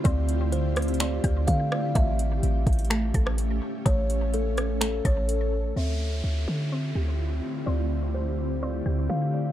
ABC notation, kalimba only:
X:1
M:4/4
L:1/8
Q:1/4=126
K:Dm
V:1 name="Kalimba"
d2 c2 d2 f d | e2 z6 | ^c2 A2 A c3 | e2 z6 |
d2 c2 d2 f d |]